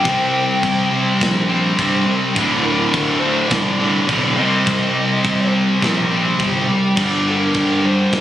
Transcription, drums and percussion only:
0.05 kick, crash
0.63 kick, crash
1.21 kick, snare, crash
1.79 kick, crash
2.36 kick, crash
2.94 kick, crash
3.51 kick, snare, crash
4.09 kick, crash
4.67 kick, crash
5.25 kick, crash
5.82 kick, snare, crash
6.40 kick, crash
6.97 kick, crash
7.54 kick, crash
8.13 kick, snare, crash

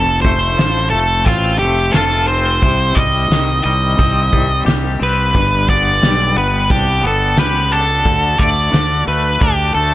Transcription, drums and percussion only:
0.24 kick, open hi-hat
0.59 snare, open hi-hat
0.93 open hi-hat
1.26 kick, open hi-hat
1.60 open hi-hat
1.94 snare, open hi-hat
2.29 open hi-hat
2.63 kick, open hi-hat
2.97 kick, open hi-hat
3.31 snare, open hi-hat
3.66 open hi-hat
3.99 kick, open hi-hat
4.33 kick, open hi-hat
4.68 snare, open hi-hat
5.02 open hi-hat
5.35 kick, open hi-hat
5.69 kick, open hi-hat
6.03 snare, open hi-hat
6.38 open hi-hat
6.70 kick, open hi-hat
7.05 open hi-hat
7.37 snare, open hi-hat
7.72 open hi-hat
8.05 kick, open hi-hat
8.40 kick, open hi-hat
8.74 snare, open hi-hat
9.08 open hi-hat
9.41 kick, open hi-hat
9.76 open hi-hat

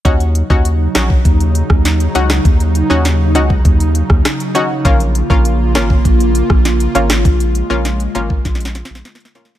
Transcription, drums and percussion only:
0.05 kick, closed hi-hat
0.20 closed hi-hat
0.35 closed hi-hat
0.50 kick
0.65 closed hi-hat
0.95 cross-stick, snare, closed hi-hat
1.10 kick
1.25 kick, closed hi-hat
1.40 closed hi-hat
1.55 closed hi-hat
1.70 kick, cross-stick
1.85 snare, closed hi-hat
2.00 closed hi-hat
2.15 closed hi-hat
2.30 cross-stick, snare
2.45 kick, closed hi-hat
2.60 closed hi-hat
2.75 closed hi-hat
3.05 snare, closed hi-hat
3.35 closed hi-hat
3.50 kick
3.65 kick, closed hi-hat
3.80 closed hi-hat
3.95 closed hi-hat
4.10 kick, cross-stick
4.25 cross-stick, snare, closed hi-hat
4.40 closed hi-hat
4.55 closed hi-hat
4.85 kick, closed hi-hat
5.00 closed hi-hat
5.15 closed hi-hat
5.30 kick
5.45 closed hi-hat
5.75 cross-stick, snare, closed hi-hat
5.90 kick
6.05 kick, closed hi-hat
6.20 closed hi-hat
6.35 closed hi-hat
6.50 kick, cross-stick
6.65 snare, closed hi-hat
6.80 closed hi-hat
6.95 closed hi-hat
7.10 cross-stick, snare
7.25 kick, closed hi-hat
7.40 closed hi-hat
7.55 closed hi-hat
7.85 snare, closed hi-hat
8.00 closed hi-hat
8.15 closed hi-hat
8.30 kick
8.45 kick, snare, closed hi-hat
8.55 snare
8.60 closed hi-hat
8.65 snare
8.75 snare, closed hi-hat
8.85 snare
8.95 snare
9.05 snare, closed hi-hat
9.15 snare
9.20 closed hi-hat
9.25 snare
9.35 snare, closed hi-hat
9.45 snare
9.55 snare

